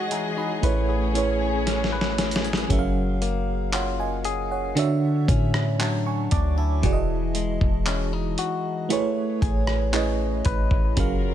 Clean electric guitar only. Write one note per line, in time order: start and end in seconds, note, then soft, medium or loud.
0.00 0.73 E3 medium
0.00 0.11 G#3 medium
0.00 0.36 D#4 medium
0.00 0.73 F#4 medium
0.11 0.63 G#3 medium
0.37 0.73 D#4 medium
0.63 2.70 A3 medium
0.63 1.91 B4 medium
0.89 1.41 G#4 medium
1.15 1.66 C#4 medium
1.41 2.44 G#4 medium
1.67 2.18 C#4 medium
1.92 2.80 B4 medium
2.19 3.21 C#4 medium
2.44 2.80 G#4 medium
2.70 5.80 F#3 medium
3.22 4.87 A#3 medium
3.73 4.87 F4 medium
4.25 4.87 G#4 medium
4.77 6.83 D3 medium
5.28 6.94 C#4 medium
5.80 6.94 F#3 medium
6.32 6.58 D4 medium
6.58 6.94 E4 medium
6.83 9.01 E3 medium
7.35 8.90 G#3 medium
7.87 8.13 C#4 medium
8.13 9.01 D#4 medium
8.39 9.01 F#4 medium
8.90 10.97 A3 medium
9.42 11.08 G#4 medium
9.94 11.34 C#4 medium
10.46 11.08 B4 medium
10.97 11.34 F#3 medium